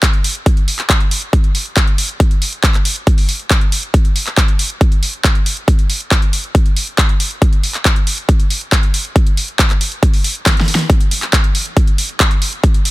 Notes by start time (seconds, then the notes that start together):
0.03 kick, clap, closed hi-hat
0.14 closed hi-hat
0.24 open hi-hat
0.35 closed hi-hat
0.46 kick, closed hi-hat
0.57 closed hi-hat
0.68 open hi-hat
0.79 clap
0.90 kick, clap, closed hi-hat
1.00 closed hi-hat
1.11 open hi-hat
1.22 closed hi-hat
1.33 kick, closed hi-hat
1.44 closed hi-hat
1.55 open hi-hat
1.66 closed hi-hat
1.77 kick, clap, closed hi-hat
1.87 closed hi-hat
1.98 open hi-hat
2.09 closed hi-hat
2.20 kick, closed hi-hat
2.31 closed hi-hat
2.42 open hi-hat
2.53 closed hi-hat
2.63 kick, clap, closed hi-hat
2.74 clap, closed hi-hat
2.85 open hi-hat
2.96 closed hi-hat
3.07 kick, closed hi-hat
3.18 open hi-hat
3.29 open hi-hat
3.40 closed hi-hat
3.50 kick, clap, closed hi-hat
3.61 closed hi-hat
3.72 open hi-hat
3.83 closed hi-hat
3.94 kick, closed hi-hat
4.05 closed hi-hat
4.16 open hi-hat
4.27 clap, closed hi-hat
4.37 kick, clap, closed hi-hat
4.48 closed hi-hat
4.59 open hi-hat
4.70 closed hi-hat
4.81 kick, closed hi-hat
4.92 closed hi-hat
5.03 open hi-hat
5.14 closed hi-hat
5.24 kick, clap, closed hi-hat
5.35 closed hi-hat
5.46 open hi-hat
5.57 closed hi-hat
5.68 kick, closed hi-hat
5.79 closed hi-hat
5.90 open hi-hat
6.01 closed hi-hat
6.11 kick, clap, closed hi-hat
6.22 closed hi-hat
6.33 open hi-hat
6.44 closed hi-hat
6.55 kick, closed hi-hat
6.66 closed hi-hat
6.77 open hi-hat
6.87 closed hi-hat
6.98 kick, clap, closed hi-hat
7.09 closed hi-hat
7.20 open hi-hat
7.31 closed hi-hat
7.42 kick, closed hi-hat
7.53 closed hi-hat
7.64 open hi-hat
7.74 clap, closed hi-hat
7.85 kick, clap, closed hi-hat
7.96 closed hi-hat
8.07 open hi-hat
8.18 closed hi-hat
8.29 kick, closed hi-hat
8.40 closed hi-hat
8.50 open hi-hat
8.61 closed hi-hat
8.72 kick, clap, closed hi-hat
8.83 closed hi-hat
8.94 open hi-hat
9.05 closed hi-hat
9.16 kick, closed hi-hat
9.27 closed hi-hat
9.37 open hi-hat
9.48 closed hi-hat
9.59 kick, clap, closed hi-hat
9.70 clap, closed hi-hat
9.81 open hi-hat
9.92 closed hi-hat
10.03 kick, closed hi-hat
10.14 open hi-hat
10.24 open hi-hat
10.35 closed hi-hat
10.46 kick, snare, clap, closed hi-hat
10.57 snare, closed hi-hat
10.68 open hi-hat
10.75 snare, closed hi-hat
10.90 kick, closed hi-hat
11.01 closed hi-hat
11.11 open hi-hat
11.22 clap, closed hi-hat
11.33 kick, clap, closed hi-hat
11.44 closed hi-hat
11.55 open hi-hat
11.66 closed hi-hat
11.77 kick, closed hi-hat
11.87 closed hi-hat
11.98 open hi-hat
12.09 closed hi-hat
12.20 kick, clap, closed hi-hat
12.31 closed hi-hat
12.42 open hi-hat
12.53 closed hi-hat
12.64 kick, closed hi-hat
12.74 closed hi-hat
12.85 open hi-hat